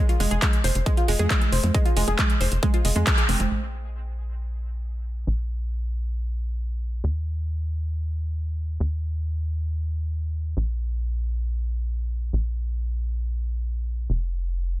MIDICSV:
0, 0, Header, 1, 4, 480
1, 0, Start_track
1, 0, Tempo, 441176
1, 1899, Time_signature, 4, 2, 24, 8
1, 16102, End_track
2, 0, Start_track
2, 0, Title_t, "Synth arpeggio sound"
2, 0, Program_c, 0, 84
2, 98, Note_on_c, 0, 65, 76
2, 147, Note_off_c, 0, 65, 0
2, 218, Note_on_c, 0, 56, 101
2, 333, Note_off_c, 0, 56, 0
2, 338, Note_on_c, 0, 68, 79
2, 419, Note_off_c, 0, 68, 0
2, 458, Note_on_c, 0, 56, 97
2, 507, Note_off_c, 0, 56, 0
2, 698, Note_on_c, 0, 72, 79
2, 779, Note_off_c, 0, 72, 0
2, 938, Note_on_c, 0, 56, 99
2, 1019, Note_off_c, 0, 56, 0
2, 1059, Note_on_c, 0, 65, 77
2, 1107, Note_off_c, 0, 65, 0
2, 1179, Note_on_c, 0, 56, 102
2, 1293, Note_off_c, 0, 56, 0
2, 1299, Note_on_c, 0, 68, 76
2, 1379, Note_off_c, 0, 68, 0
2, 1418, Note_on_c, 0, 56, 103
2, 1467, Note_off_c, 0, 56, 0
2, 1659, Note_on_c, 0, 72, 76
2, 1739, Note_off_c, 0, 72, 0
2, 1899, Note_on_c, 0, 56, 102
2, 1979, Note_off_c, 0, 56, 0
2, 2019, Note_on_c, 0, 65, 76
2, 2067, Note_off_c, 0, 65, 0
2, 2139, Note_on_c, 0, 56, 101
2, 2253, Note_off_c, 0, 56, 0
2, 2259, Note_on_c, 0, 68, 76
2, 2339, Note_off_c, 0, 68, 0
2, 2379, Note_on_c, 0, 56, 100
2, 2427, Note_off_c, 0, 56, 0
2, 2619, Note_on_c, 0, 72, 79
2, 2699, Note_off_c, 0, 72, 0
2, 2859, Note_on_c, 0, 56, 101
2, 2939, Note_off_c, 0, 56, 0
2, 2979, Note_on_c, 0, 65, 77
2, 3027, Note_off_c, 0, 65, 0
2, 3099, Note_on_c, 0, 56, 81
2, 3147, Note_off_c, 0, 56, 0
2, 3218, Note_on_c, 0, 56, 77
2, 3325, Note_off_c, 0, 56, 0
2, 3338, Note_on_c, 0, 56, 83
2, 3419, Note_off_c, 0, 56, 0
2, 3458, Note_on_c, 0, 68, 77
2, 3539, Note_off_c, 0, 68, 0
2, 3579, Note_on_c, 0, 60, 79
2, 3659, Note_off_c, 0, 60, 0
2, 16102, End_track
3, 0, Start_track
3, 0, Title_t, "Analog synth bass"
3, 0, Program_c, 1, 38
3, 218, Note_on_c, 1, 29, 90
3, 300, Note_off_c, 1, 29, 0
3, 339, Note_on_c, 1, 29, 79
3, 420, Note_off_c, 1, 29, 0
3, 698, Note_on_c, 1, 29, 94
3, 780, Note_off_c, 1, 29, 0
3, 818, Note_on_c, 1, 29, 81
3, 900, Note_off_c, 1, 29, 0
3, 1178, Note_on_c, 1, 29, 95
3, 1260, Note_off_c, 1, 29, 0
3, 1298, Note_on_c, 1, 41, 82
3, 1380, Note_off_c, 1, 41, 0
3, 1658, Note_on_c, 1, 29, 96
3, 1740, Note_off_c, 1, 29, 0
3, 1777, Note_on_c, 1, 41, 80
3, 1860, Note_off_c, 1, 41, 0
3, 2137, Note_on_c, 1, 29, 92
3, 2220, Note_off_c, 1, 29, 0
3, 2258, Note_on_c, 1, 29, 81
3, 2340, Note_off_c, 1, 29, 0
3, 2618, Note_on_c, 1, 29, 95
3, 2700, Note_off_c, 1, 29, 0
3, 2738, Note_on_c, 1, 29, 81
3, 2820, Note_off_c, 1, 29, 0
3, 3098, Note_on_c, 1, 29, 93
3, 3180, Note_off_c, 1, 29, 0
3, 3219, Note_on_c, 1, 41, 81
3, 3300, Note_off_c, 1, 41, 0
3, 3578, Note_on_c, 1, 29, 95
3, 3660, Note_off_c, 1, 29, 0
3, 3699, Note_on_c, 1, 29, 80
3, 3780, Note_off_c, 1, 29, 0
3, 3818, Note_on_c, 1, 34, 86
3, 5715, Note_off_c, 1, 34, 0
3, 5737, Note_on_c, 1, 34, 86
3, 7634, Note_off_c, 1, 34, 0
3, 7659, Note_on_c, 1, 39, 86
3, 9555, Note_off_c, 1, 39, 0
3, 9579, Note_on_c, 1, 39, 88
3, 11475, Note_off_c, 1, 39, 0
3, 11499, Note_on_c, 1, 34, 87
3, 13395, Note_off_c, 1, 34, 0
3, 13419, Note_on_c, 1, 34, 85
3, 15315, Note_off_c, 1, 34, 0
3, 15338, Note_on_c, 1, 29, 89
3, 16102, Note_off_c, 1, 29, 0
3, 16102, End_track
4, 0, Start_track
4, 0, Title_t, "Drums"
4, 99, Note_on_c, 9, 42, 56
4, 208, Note_off_c, 9, 42, 0
4, 219, Note_on_c, 9, 46, 97
4, 328, Note_off_c, 9, 46, 0
4, 339, Note_on_c, 9, 42, 56
4, 448, Note_off_c, 9, 42, 0
4, 459, Note_on_c, 9, 36, 108
4, 460, Note_on_c, 9, 39, 116
4, 460, Note_on_c, 9, 42, 96
4, 568, Note_off_c, 9, 36, 0
4, 568, Note_off_c, 9, 39, 0
4, 568, Note_off_c, 9, 42, 0
4, 579, Note_on_c, 9, 42, 55
4, 688, Note_off_c, 9, 42, 0
4, 698, Note_on_c, 9, 46, 92
4, 807, Note_off_c, 9, 46, 0
4, 819, Note_on_c, 9, 42, 55
4, 928, Note_off_c, 9, 42, 0
4, 939, Note_on_c, 9, 36, 111
4, 939, Note_on_c, 9, 42, 95
4, 1047, Note_off_c, 9, 36, 0
4, 1048, Note_off_c, 9, 42, 0
4, 1059, Note_on_c, 9, 42, 55
4, 1168, Note_off_c, 9, 42, 0
4, 1179, Note_on_c, 9, 46, 99
4, 1288, Note_off_c, 9, 46, 0
4, 1299, Note_on_c, 9, 42, 54
4, 1299, Note_on_c, 9, 63, 79
4, 1408, Note_off_c, 9, 42, 0
4, 1408, Note_off_c, 9, 63, 0
4, 1419, Note_on_c, 9, 36, 110
4, 1419, Note_on_c, 9, 39, 117
4, 1419, Note_on_c, 9, 42, 92
4, 1528, Note_off_c, 9, 36, 0
4, 1528, Note_off_c, 9, 39, 0
4, 1528, Note_off_c, 9, 42, 0
4, 1539, Note_on_c, 9, 42, 53
4, 1539, Note_on_c, 9, 63, 79
4, 1648, Note_off_c, 9, 42, 0
4, 1648, Note_off_c, 9, 63, 0
4, 1659, Note_on_c, 9, 46, 87
4, 1768, Note_off_c, 9, 46, 0
4, 1779, Note_on_c, 9, 42, 54
4, 1779, Note_on_c, 9, 63, 80
4, 1888, Note_off_c, 9, 42, 0
4, 1888, Note_off_c, 9, 63, 0
4, 1899, Note_on_c, 9, 36, 113
4, 1899, Note_on_c, 9, 42, 91
4, 2007, Note_off_c, 9, 42, 0
4, 2008, Note_off_c, 9, 36, 0
4, 2019, Note_on_c, 9, 42, 54
4, 2127, Note_off_c, 9, 42, 0
4, 2138, Note_on_c, 9, 46, 100
4, 2247, Note_off_c, 9, 46, 0
4, 2259, Note_on_c, 9, 42, 55
4, 2259, Note_on_c, 9, 63, 62
4, 2368, Note_off_c, 9, 42, 0
4, 2368, Note_off_c, 9, 63, 0
4, 2378, Note_on_c, 9, 39, 121
4, 2378, Note_on_c, 9, 42, 100
4, 2379, Note_on_c, 9, 36, 110
4, 2487, Note_off_c, 9, 36, 0
4, 2487, Note_off_c, 9, 39, 0
4, 2487, Note_off_c, 9, 42, 0
4, 2498, Note_on_c, 9, 42, 56
4, 2607, Note_off_c, 9, 42, 0
4, 2618, Note_on_c, 9, 46, 93
4, 2727, Note_off_c, 9, 46, 0
4, 2738, Note_on_c, 9, 42, 57
4, 2847, Note_off_c, 9, 42, 0
4, 2858, Note_on_c, 9, 42, 95
4, 2859, Note_on_c, 9, 36, 115
4, 2967, Note_off_c, 9, 36, 0
4, 2967, Note_off_c, 9, 42, 0
4, 2979, Note_on_c, 9, 42, 57
4, 3087, Note_off_c, 9, 42, 0
4, 3098, Note_on_c, 9, 46, 102
4, 3207, Note_off_c, 9, 46, 0
4, 3218, Note_on_c, 9, 42, 56
4, 3218, Note_on_c, 9, 63, 75
4, 3327, Note_off_c, 9, 42, 0
4, 3327, Note_off_c, 9, 63, 0
4, 3338, Note_on_c, 9, 39, 125
4, 3338, Note_on_c, 9, 42, 98
4, 3339, Note_on_c, 9, 36, 113
4, 3447, Note_off_c, 9, 36, 0
4, 3447, Note_off_c, 9, 39, 0
4, 3447, Note_off_c, 9, 42, 0
4, 3459, Note_on_c, 9, 42, 55
4, 3567, Note_off_c, 9, 42, 0
4, 3578, Note_on_c, 9, 46, 88
4, 3578, Note_on_c, 9, 63, 60
4, 3687, Note_off_c, 9, 46, 0
4, 3687, Note_off_c, 9, 63, 0
4, 3698, Note_on_c, 9, 42, 55
4, 3698, Note_on_c, 9, 63, 78
4, 3807, Note_off_c, 9, 42, 0
4, 3807, Note_off_c, 9, 63, 0
4, 16102, End_track
0, 0, End_of_file